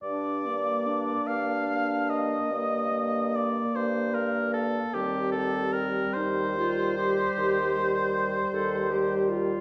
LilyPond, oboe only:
\new Staff \with { instrumentName = "Oboe" } { \time 12/8 \key g \minor \tempo 4. = 49 d''4. f''4 ees''4. d''8 c''8 bes'8 a'8 | g'8 a'8 bes'8 c''1 r8 | }